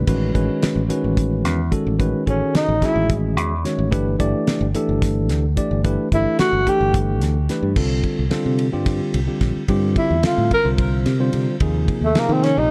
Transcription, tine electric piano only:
0.07 D#3 G#3 C#4 F#4 B4
0.34 D#3 G#3 C#4 F#4 B4
0.89 D#3 G#3 C#4 F#4 B4
1.71 D#3 G#3 C#4 F#4 A4
1.99 D#3 G#3 C#4 F#4 B4
2.26 D#3 C#4 F#4 G#4 A4
2.81 D#3 G#3 C#4 F#4 G#4
3.64 D#3 G#3 C#4 F#4 C#5
3.91 E3 A3 D4 G4 B4
4.19 E3 A3 D4 G4 D5
4.75 E3 A3 D4 G4 A4
5.56 E3 A3 D4 G4 D5
5.84 E3 A3 D4 G4 B4
6.13 E3 A3 D4 G4 A4
6.67 E3 A3 D4 G4 A4
7.49 E3 A3 D4 G4 B4
7.76 D3 G3 C4 F4 A4
8.30 D3 G3 C4 F4 A4
8.72 D3 G3 C4 F4 G4
9.27 D3 G3 C4 F4 G4
9.69 D3 G3 C4 F4 G4
10.24 D3 G3 C4 F4 A4
10.64 D3 G3 C4 F4 C5
11.19 D3 G3 C4 F4 C5
11.61 C3 F3 A#3 D#4 G#4
12.15 C3 F3 A#3 D#4 G#4
12.57 C3 F3 A#3 D#4 G4

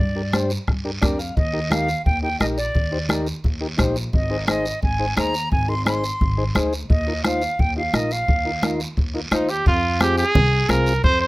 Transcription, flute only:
Already playing: D5
1.36 D#5
1.71 F5
2.05 G5
2.23 G5
2.40 D#5
2.57 D5
4.13 D#5
4.48 D#5
4.83 G#5
5.17 A#5
5.52 G#5
5.69 C6
5.86 C6
6.90 D#5
7.25 F5
7.60 G5
7.77 F5
7.95 D#5
8.12 F5

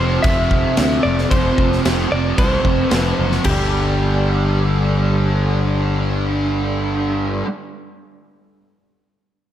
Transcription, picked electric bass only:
0.00 F1
0.24 F1
0.79 D2
1.05 F1
1.32 F1
1.58 F1
1.86 F1
2.12 F1
2.38 C2
2.65 F1
2.92 F1
3.19 F#1
3.45 G1

